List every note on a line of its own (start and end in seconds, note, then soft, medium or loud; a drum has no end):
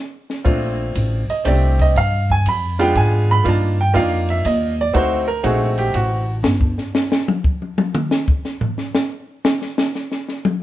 0.30 snare soft
0.44 0.94 A#1 medium
0.44 1.22 A3 medium
0.44 1.22 C4 medium
0.44 1.22 D4 medium
0.44 1.22 F4 medium
0.44 kick medium
0.44 crash medium
0.95 1.27 A1 medium
0.95 kick soft
0.95 hi-hat pedal medium
0.95 ride medium
1.29 1.45 D#5 medium
1.29 muted upright bass stroke soft
1.29 ride soft
1.44 1.94 C2 medium
1.44 1.95 A3 medium
1.44 1.95 C4 medium
1.44 1.95 D4 medium
1.44 1.95 G4 medium
1.44 1.79 D5 medium
1.44 kick soft
1.44 snare soft
1.44 hi-hat pedal medium
1.44 ride medium
1.79 1.96 D#5 medium
1.79 kick medium
1.79 ride soft
1.95 2.44 G2 medium
1.95 2.29 F5 medium
1.95 kick soft
1.95 ride medium
2.30 2.46 G#5 medium
2.30 kick soft
2.46 2.94 F2 medium
2.46 2.80 B5 medium
2.46 kick soft
2.46 hi-hat pedal soft
2.46 ride medium
2.79 3.42 G#3 medium
2.79 3.42 B3 medium
2.79 3.42 D4 medium
2.79 3.42 F4 medium
2.79 2.96 G5 medium
2.79 snare soft
2.79 ride soft
2.95 3.44 G#2 medium
2.95 3.29 G#5 medium
2.95 kick soft
2.95 ride medium
3.31 3.46 B5 loud
3.44 3.94 G2 medium
3.44 3.75 A#3 medium
3.44 3.75 D4 medium
3.44 3.75 D#4 medium
3.44 3.75 F4 medium
3.44 kick soft
3.44 ride medium
3.49 3.80 A5 medium
3.81 3.95 G5 medium
3.94 4.44 F2 medium
3.94 4.71 A#3 medium
3.94 4.71 D4 medium
3.94 4.71 D#4 medium
3.94 4.72 F4 medium
3.94 4.29 F5 medium
3.94 kick soft
3.94 hi-hat pedal medium
3.94 ride medium
4.29 4.45 E5 medium
4.29 ride soft
4.45 4.94 D#2 medium
4.45 4.78 D#5 medium
4.45 kick soft
4.45 hi-hat pedal medium
4.45 ride medium
4.81 4.96 D5 medium
4.93 5.43 D2 medium
4.93 5.25 A3 medium
4.93 5.25 C4 medium
4.93 5.25 D#4 medium
4.93 5.25 F#4 medium
4.93 5.28 C5 medium
4.93 kick soft
4.93 ride medium
5.28 5.44 A#4 medium
5.43 5.93 A#1 medium
5.43 6.21 A3 medium
5.43 6.21 C4 medium
5.43 6.21 D#4 medium
5.43 5.94 F#4 medium
5.43 5.78 G#4 medium
5.43 kick soft
5.43 hi-hat pedal medium
5.43 ride medium
5.78 5.94 G4 medium
5.78 ride soft
5.94 6.42 A1 medium
5.94 6.34 F#4 medium
5.94 kick soft
5.94 ride medium
6.43 6.76 G1 medium
6.43 snare loud
6.61 kick medium
6.78 snare soft
6.94 snare loud
6.94 hi-hat pedal medium
7.12 snare loud
7.28 high tom loud
7.44 kick medium
7.62 high tom soft
7.78 high tom loud
7.95 mid tom loud
8.11 snare medium
8.28 kick medium
8.45 snare soft
8.45 hi-hat pedal medium
8.61 floor tom loud
8.78 snare soft
8.95 snare loud
9.45 snare loud
9.62 snare soft
9.78 snare loud
9.95 snare soft
9.95 hi-hat pedal medium
10.12 snare medium
10.28 snare soft
10.45 high tom loud